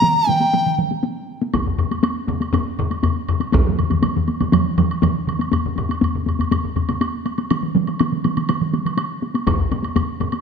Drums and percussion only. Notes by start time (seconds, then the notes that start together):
0.02 taiko mid, taiko high
0.27 taiko mid, taiko high
0.40 taiko high
0.54 taiko mid, taiko high
0.66 taiko mid
0.78 taiko mid
0.91 taiko high
1.03 taiko high
1.42 taiko high
1.54 taiko, taiko low-mid, taiko high, high woodblock
1.67 taiko low-mid
1.78 taiko low-mid, high woodblock
1.91 taiko high, high woodblock
2.03 taiko high, high woodblock
2.28 taiko low-mid, taiko high, high woodblock
2.41 taiko high, high woodblock
2.53 taiko low-mid, taiko high, high woodblock
2.79 taiko low-mid, high woodblock
2.91 taiko high, high woodblock
3.03 taiko low-mid, taiko high, high woodblock
3.29 taiko low-mid, high woodblock
3.40 taiko high, high woodblock
3.52 taiko, taiko low-mid, taiko mid, taiko high, high woodblock
3.67 taiko low-mid, taiko mid
3.79 taiko low-mid, taiko mid, high woodblock
3.90 taiko low-mid, taiko mid, taiko high, high woodblock
4.02 taiko low-mid, taiko mid, taiko high, high woodblock
4.16 taiko low-mid, taiko mid
4.28 taiko high, high woodblock
4.41 taiko low-mid, taiko mid, taiko high, high woodblock
4.52 taiko low-mid, taiko mid, taiko high, high woodblock
4.78 taiko low-mid, taiko mid, high woodblock
4.91 high woodblock
5.02 taiko low-mid, taiko mid, taiko high, high woodblock
5.27 taiko low-mid, taiko mid, high woodblock
5.39 taiko high, high woodblock
5.52 taiko low-mid, taiko high, high woodblock
5.66 taiko low-mid
5.76 taiko low-mid, taiko high, high woodblock
5.89 taiko high, high woodblock
6.01 taiko low-mid, taiko high, high woodblock
6.15 taiko low-mid
6.26 taiko low-mid, taiko high, high woodblock
6.39 taiko low-mid, taiko high, high woodblock
6.51 taiko low-mid, taiko high, high woodblock
6.64 taiko low-mid
6.76 taiko low-mid, taiko high, high woodblock
6.89 taiko low-mid, taiko high, high woodblock
7.01 taiko high, high woodblock
7.26 taiko high, high woodblock
7.38 taiko high, high woodblock
7.50 taiko mid, taiko high, high woodblock
7.63 taiko mid
7.75 taiko mid, taiko high
7.87 taiko high, high woodblock
7.99 taiko mid, taiko high, high woodblock
8.12 taiko mid
8.24 taiko mid, taiko high, high woodblock
8.37 taiko mid, taiko high, high woodblock
8.49 taiko mid, taiko high, high woodblock
8.61 taiko mid
8.73 taiko mid, taiko high, high woodblock
8.86 taiko mid, high woodblock
8.97 taiko high, high woodblock
9.22 taiko high
9.34 taiko high, high woodblock
9.47 taiko, taiko low-mid, taiko high, high woodblock
9.59 taiko low-mid
9.71 taiko low-mid, taiko high, high woodblock
9.83 taiko high, high woodblock
9.96 taiko low-mid, taiko high, high woodblock
10.20 taiko low-mid, taiko high, high woodblock
10.32 taiko high, high woodblock